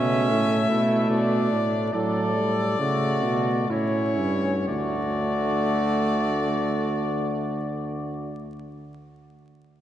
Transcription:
Already playing: B2 A3 C#4 E5
0.31 A2
0.70 B2 E4
1.10 B2 D4 D5
1.52 A2
1.93 A2 F#3 A4 D5
2.35 G3
2.79 C#3 A3 F#4
3.24 B2
3.69 A2 C#4 E4 C#5
4.17 G2
4.68 D2 A3 F#4 D5

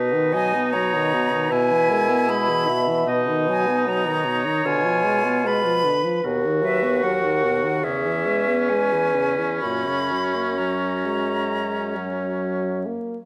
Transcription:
Already playing: B2 D#4 B4
0.13 D#3
0.33 F#3 D#5 G#5
0.54 B3
0.72 F#3 C#5 A#5
0.94 D#3
1.14 B2
1.33 D#3
1.50 B2 E4 B4 G#5
1.71 E3
1.89 G#3 A#4
2.09 B3
2.28 G#3 G#4 B5
2.49 E3
2.68 B2 E5
2.88 E3
3.08 B2 D#4 D#5
3.28 D#3
3.48 F#3 G#5
3.68 B3
3.87 F#3 C#5 A#5
4.06 D#3
4.25 B2
4.45 D#3
4.64 B2 D3 F4 G#5
4.85 F3
5.04 G#3
5.24 B3
5.45 G#3 B4 B5
5.64 F3
5.84 D3
6.04 F3
6.24 D#2 B2 F#4 A#4
6.45 D#3
6.62 F#3 B4 E5
6.83 B3
7.03 F#3 A#4 F#5
7.23 D#3
7.45 B2
7.64 D#3
7.84 E2 C#3 C#4 G#4 E5
8.06 E3
8.26 G#3 B4
8.48 B3
8.69 G#3 G#5
8.92 E3
9.15 C#3
9.39 E3
9.60 F#2 A#2 F#4 B5
9.87 C#3
10.11 F#3
10.35 A#3
10.58 F#3 A#5
11.05 G#3
11.96 F#3
12.86 A#3

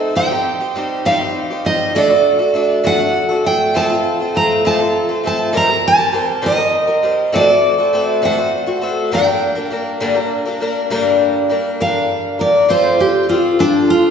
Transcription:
Already playing: A3 C4 D#4 A4
0.15 C3 G3 C4 D#4 G4 G5
0.31 C4 D#4 G4
0.61 C4 D#4 G4
0.75 G3 C4 D#4 G4
1.05 C3 G3 C4 D#4 G4 F5
1.20 C4 D#4 G4
1.50 C4 D#4 G4
1.65 G3 C4 D#4 G4 D#5
1.95 D3 A3 D4 F#4 A4 D5
2.09 D4 F#4 A4
2.39 D4 F#4 A4
2.54 A3 D4 F#4 A4
2.84 D3 A3 D4 F#4 A4 F#5
2.98 D4 F#4 A4
3.29 D4 F#4 A4
3.44 A3 D4 F#4 A4 G5
3.74 F3 A3 C4 F4 A4 A5
3.89 C4 F4 A4
4.20 C4 F4 A4
4.35 A3 C4 F4 A4 A#5
4.65 F3 A3 C4 F4 A4 A5
4.80 C4 F4 A4
5.09 C4 F4 A4
5.24 A3 C4 F4 A4 A5
5.53 D#3 G3 C4 G4 A#4
5.57 A#5
5.68 C4 G4 A#4
5.88 A5
5.98 C4 G4 A#4
6.12 G3 C4 G4 A#4
6.42 D#3 G3 C4 G4 A#4
6.46 D#5
6.58 C4 G4 A#4
6.87 C4 G4 A#4
7.03 G3 C4 G4 A#4
7.32 D3 A3 C4 F#4 A4 D5
7.48 C4 F#4 A4
7.78 C4 F#4 A4
7.93 A3 C4 F#4 A4
8.22 D3 A3 C4 F#4 A4 F#5
8.37 C4 F#4 A4
8.66 C4 F#4 A4
8.81 A3 C4 F#4 A4
9.11 G2 D3 G3 A#3 D4 A#4 G5
9.26 G3 A#3 D4 A#4
9.55 G3 A#3 D4 A#4
9.70 G3 A#3 D4 A#4
10.00 G2 D3 G3 A#3 D4 A#4
10.15 G3 A#3 D4 A#4
10.46 G3 A#3 D4 A#4
10.60 G3 A#3 D4 A#4
10.90 G2 D3 G3 A#3 D4 A#4
11.49 G3 A#3 D4 A#4
11.80 G2 D3 G3 A#3 D4 A#4 F5
12.39 G3 A#3 D4 A#4 D5
12.69 F3 C4 F4 A4 C5
13.00 G4
13.29 F3 C4 F4 A4
13.59 F3 C4 D4 F4 A4
13.90 F4

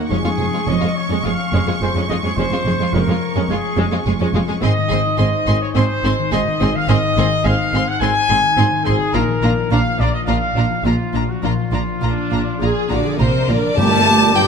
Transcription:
Already playing: D#3 A#3 D#4 F#4 A#4 F#5 A#5
0.10 F1 F2 F3 G#3 C#4 G#4 C#6
0.24 F2 G#3 C#4 F4
0.38 F1 F2 G#3 F4 G#4
0.53 F2 G#3 F4 G#4
0.67 F1 F2 G#3 C#4 C#5 D#5
0.81 F2 G#3 F4 F5
0.96 C#5 G#5
1.10 F2 G#3 C#4 D#5 C#6
1.24 F1 F2 G#3 F4 F5 G#5
1.39 C#5
1.52 F1 F2 G#3 C#4 G#4
1.66 F2 G#3 C#4 F4
1.81 F1 F2 G#3 F4 G#4 C5
1.95 F2 G#3 C#4
2.09 F1 F2 G#3 F4 D#5
2.23 F2 G#3 C#4 G#4 C#5
2.37 F1 F2 F3 G#3 C#4 C5
2.51 F2 G#3 F4
2.65 F1 F2 G#3 C#4 G#4
2.79 F2 G#3 F4 G#4
2.93 F1 F2 G#3 C#4 A#4 C#5
3.07 F2 G#3 F4 F5
3.22 G#5
3.35 F2 G#3 C#4 C#6
3.49 F1 F2 G#3 F4 G#4 G#5
3.63 C#5
3.77 F1 F2 G#3 C#4 G#4
3.91 F2 G#3 C#4 F4
4.06 F1 F2 G#3 F4 G#4
4.20 F2 G#3 C#4
4.34 F1 F2 G#3 F4
4.48 F2 G#3 C#4 G#4
4.62 G#1 G#2 C4 G#4 D#5 C6
4.77 D#3
4.89 G#1 G#2 C4 G#4 C6
5.05 D#4
5.17 G#1 G#2 C4 G#4 D#5 C6
5.33 C5
5.47 G#1 G#2 C4 G#4 D#5 C6
5.62 C#5 G#5
5.75 G#1 G#2 C4 G#4 C5 D#5 C6
5.90 G#4
6.03 G#1 G#2 C4 D#4 G#4 C6
6.19 D#3
6.31 G#1 G#2 C4 G#4 D#5 C6
6.46 D#3
6.60 G#1 G#2 C4 G#4 C6
6.75 D#3 F5
6.88 G#1 G#2 C4 G#4 D#5 C6
7.03 C4
7.17 G#1 G#2 D#3 C4 G#4 C6
7.31 D#4
7.44 G#1 G#2 C4 G#4 F5 C6
7.58 C5
7.72 G#1 G#2 C4 G#4 D#5 C6
7.86 F#5 G#5
8.01 G#1 G#2 C4 G#4 D#5 G#5 C6
8.29 G#1 G#2 C4 D#4 G#4 C6
8.43 D#3
8.57 G#1 G#2 C4 G#4 C6
8.71 D#3
8.85 G#1 G#2 C4 G#4 C6
9.00 D#3
9.14 A#1 A#2 D4 F4 A#4 A#5
9.28 F3
9.42 A#1 A#2 D4 F4 A#5
9.56 D4
9.70 A#1 A#2 D4 F4 F5 A#5
9.99 A#1 A#2 D4 F4 D5 A#5
10.13 D#5 F5
10.27 A#1 A#2 D4 F4 D5 F5 A#5
10.41 F4
10.56 A#1 A#2 D4 F4 A#5
10.70 F3
10.85 A#1 A#2 D4 F4 A#5
10.99 F3
11.13 A#1 A#2 D4 F4 A#5
11.27 F3 F#4
11.42 A#1 A#2 D4 F4 A#5
11.72 A#1 A#2 F3 D4 F4 A#5
11.87 D4
12.01 A#1 A#2 D4 F4 A#5
12.31 A#1 A#2 F4 D5 A#5
12.45 F5
12.61 A#1 A#2 F4 G#4 D5 A#5
12.76 F4
12.90 A#1 A#2 D3 D4 F4 F#4 D5 A#5
13.05 F3 G#4
13.19 A#1 A#2 C3 F4 A#4 C5 A#5
13.34 F3
13.49 A#1 A#2 D3 F4 D5 A#5
13.63 F3
13.77 G1 G2 A#2 G3 A3 G4 A#4 D5 A5 D6
13.91 A#3 A#4 D5
14.06 G3 G4 A#4
14.20 A#3 A#4 D5
14.34 G3 G4 A#4 G5

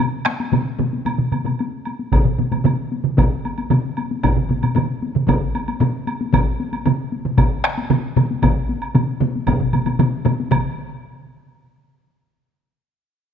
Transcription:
0.00 taiko high, high woodblock
0.25 taiko rim, taiko high
0.40 taiko high, high woodblock
0.52 taiko low-mid, taiko mid, taiko high, high woodblock
0.79 taiko low-mid, taiko mid, taiko high
0.93 taiko high
1.05 taiko low-mid, taiko mid, taiko high, high woodblock
1.19 taiko low-mid, taiko mid
1.32 taiko low-mid, taiko mid, taiko high, high woodblock
1.45 taiko low-mid, taiko mid, taiko high, high woodblock
1.59 taiko high, high woodblock
1.85 taiko high, high woodblock
1.99 taiko high
2.12 taiko, taiko low-mid, taiko mid, taiko high, high woodblock
2.25 taiko low-mid, taiko mid
2.38 taiko low-mid, taiko mid, taiko high
2.52 taiko low-mid, taiko mid, taiko high, high woodblock
2.64 taiko low-mid, taiko mid, taiko high, high woodblock
2.92 taiko high
3.04 taiko low-mid, taiko mid
3.17 taiko, taiko low-mid, taiko mid, taiko high, high woodblock
3.45 taiko high, high woodblock
3.58 taiko high, high woodblock
3.70 taiko low-mid, taiko mid, taiko high, high woodblock
3.97 taiko high, high woodblock
4.11 taiko high
4.23 taiko, taiko low-mid, taiko mid, taiko high, high woodblock
4.37 taiko low-mid, taiko mid
4.49 taiko low-mid, taiko mid, taiko high
4.62 taiko low-mid, taiko mid, taiko high, high woodblock
4.75 taiko low-mid, taiko mid, taiko high, high woodblock
5.03 taiko high
5.15 taiko low-mid, taiko mid
5.28 taiko, taiko low-mid, taiko mid, taiko high, high woodblock
5.55 taiko high, high woodblock
5.68 taiko high, high woodblock
5.80 taiko low-mid, taiko mid, taiko high, high woodblock
6.07 taiko high, high woodblock
6.21 taiko high
6.33 taiko, taiko low-mid, taiko mid, taiko high, high woodblock
6.60 taiko high
6.73 taiko high, high woodblock
6.86 taiko low-mid, taiko mid, taiko high, high woodblock
7.12 taiko high
7.25 taiko low-mid, taiko mid
7.38 taiko, taiko low-mid, taiko mid, taiko high, high woodblock
7.64 taiko rim, high woodblock
7.78 taiko high, high woodblock
7.90 taiko low-mid, taiko mid, taiko high, high woodblock
8.16 taiko low-mid, taiko mid, taiko high, high woodblock
8.31 taiko high
8.43 taiko, taiko low-mid, taiko mid, taiko high, high woodblock
8.69 taiko high
8.82 high woodblock
8.95 taiko low-mid, taiko mid, taiko high, high woodblock
9.20 taiko low-mid, taiko mid, taiko high
9.35 taiko high
9.47 taiko, taiko low-mid, taiko mid, taiko high, high woodblock
9.60 taiko low-mid, taiko mid
9.73 taiko low-mid, taiko mid, taiko high, high woodblock
9.86 taiko low-mid, taiko mid, taiko high, high woodblock
9.99 taiko low-mid, taiko mid, taiko high, high woodblock
10.25 taiko low-mid, taiko mid, taiko high, high woodblock
10.40 taiko high
10.51 taiko, taiko low-mid, taiko mid, taiko high, high woodblock

